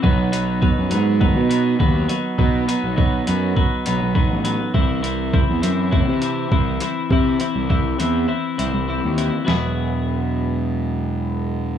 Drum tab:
HH |-x-x-x-x|-x-x-x-x|-x-x-x-x|-x-x-x-x|
SD |--------|--------|--------|--------|
BD |o-o-o-o-|o-o-o-o-|o-o-o-o-|o-o-----|

HH |--------|
SD |o-------|
BD |--------|